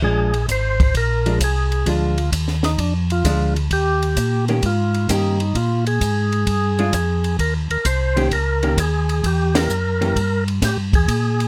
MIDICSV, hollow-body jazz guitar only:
0, 0, Header, 1, 2, 480
1, 0, Start_track
1, 0, Tempo, 460476
1, 26, Time_signature, 4, 2, 24, 8
1, 11966, End_track
2, 0, Start_track
2, 0, Title_t, "Hollow-body jazz guitar"
2, 0, Program_c, 0, 26
2, 24, Note_on_c, 0, 53, 65
2, 32, Note_on_c, 0, 56, 66
2, 34, Note_on_c, 0, 62, 68
2, 319, Note_off_c, 0, 53, 0
2, 323, Note_off_c, 0, 56, 0
2, 324, Note_off_c, 0, 62, 0
2, 1314, Note_on_c, 0, 53, 67
2, 1321, Note_on_c, 0, 56, 69
2, 1325, Note_on_c, 0, 62, 73
2, 1451, Note_off_c, 0, 53, 0
2, 1454, Note_off_c, 0, 56, 0
2, 1456, Note_off_c, 0, 62, 0
2, 1945, Note_on_c, 0, 53, 54
2, 1952, Note_on_c, 0, 56, 56
2, 1956, Note_on_c, 0, 62, 59
2, 2239, Note_off_c, 0, 53, 0
2, 2242, Note_off_c, 0, 56, 0
2, 2244, Note_off_c, 0, 62, 0
2, 3389, Note_on_c, 0, 53, 73
2, 3394, Note_on_c, 0, 56, 76
2, 3398, Note_on_c, 0, 62, 80
2, 3681, Note_off_c, 0, 53, 0
2, 3683, Note_off_c, 0, 56, 0
2, 3685, Note_off_c, 0, 62, 0
2, 4678, Note_on_c, 0, 51, 66
2, 4683, Note_on_c, 0, 58, 80
2, 4686, Note_on_c, 0, 61, 80
2, 4693, Note_on_c, 0, 67, 83
2, 4812, Note_off_c, 0, 51, 0
2, 4814, Note_off_c, 0, 58, 0
2, 4816, Note_off_c, 0, 61, 0
2, 4820, Note_off_c, 0, 67, 0
2, 5313, Note_on_c, 0, 51, 63
2, 5316, Note_on_c, 0, 58, 68
2, 5319, Note_on_c, 0, 61, 67
2, 5323, Note_on_c, 0, 67, 75
2, 5603, Note_off_c, 0, 51, 0
2, 5604, Note_off_c, 0, 58, 0
2, 5606, Note_off_c, 0, 61, 0
2, 5608, Note_off_c, 0, 67, 0
2, 7079, Note_on_c, 0, 56, 65
2, 7083, Note_on_c, 0, 62, 64
2, 7091, Note_on_c, 0, 65, 73
2, 7213, Note_off_c, 0, 56, 0
2, 7215, Note_off_c, 0, 62, 0
2, 7219, Note_off_c, 0, 65, 0
2, 8510, Note_on_c, 0, 51, 73
2, 8518, Note_on_c, 0, 58, 69
2, 8518, Note_on_c, 0, 61, 84
2, 8524, Note_on_c, 0, 67, 84
2, 8649, Note_off_c, 0, 51, 0
2, 8653, Note_off_c, 0, 58, 0
2, 8653, Note_off_c, 0, 61, 0
2, 8656, Note_off_c, 0, 67, 0
2, 8996, Note_on_c, 0, 51, 63
2, 9003, Note_on_c, 0, 58, 67
2, 9005, Note_on_c, 0, 61, 65
2, 9007, Note_on_c, 0, 67, 67
2, 9132, Note_off_c, 0, 51, 0
2, 9135, Note_off_c, 0, 58, 0
2, 9136, Note_off_c, 0, 61, 0
2, 9137, Note_off_c, 0, 67, 0
2, 9952, Note_on_c, 0, 52, 72
2, 9955, Note_on_c, 0, 58, 68
2, 9958, Note_on_c, 0, 61, 75
2, 9964, Note_on_c, 0, 67, 74
2, 10090, Note_off_c, 0, 52, 0
2, 10092, Note_off_c, 0, 58, 0
2, 10093, Note_off_c, 0, 61, 0
2, 10096, Note_off_c, 0, 67, 0
2, 10436, Note_on_c, 0, 52, 75
2, 10436, Note_on_c, 0, 58, 73
2, 10444, Note_on_c, 0, 61, 77
2, 10445, Note_on_c, 0, 67, 81
2, 10572, Note_off_c, 0, 58, 0
2, 10573, Note_off_c, 0, 52, 0
2, 10576, Note_off_c, 0, 61, 0
2, 10577, Note_off_c, 0, 67, 0
2, 11966, End_track
0, 0, End_of_file